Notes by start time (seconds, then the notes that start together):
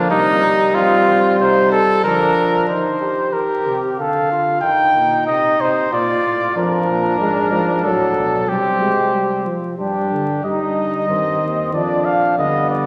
Already playing: A#3 D4
0.11 C3 G3 D#4
0.44 G3
0.74 F3 C4 F4
1.08 D#3
1.40 C3 D#4 C5
1.72 A4
2.04 D3 F3 D4 A#4
2.36 F3
2.68 D#3 D#4 C5
3.01 G4
3.33 D#3 A#4
3.66 C3
3.99 D3 A4 F5
4.31 F4
4.61 D#3 D#4 G5
4.95 A#2
5.27 C3 D#5
5.60 C3 C5
5.91 A#2 F4 D5
6.23 A2
6.56 F2 F3 D4 A#4
6.88 A#2
7.20 G#2 G#3
7.52 F3
7.84 A2 F#3 A4
8.16 B2
8.48 C3 G3 C4 G4
8.81 G#3
9.13 G3
9.45 F3
9.78 G2 G3 D4 G4
10.12 D3
10.44 G2 G3 D#4 D#5
11.08 G2 D#3 C4
11.41 D#2
11.73 F2 F3 D4 D5
12.05 F5
12.37 G2 D3 B3 D#5
12.70 D5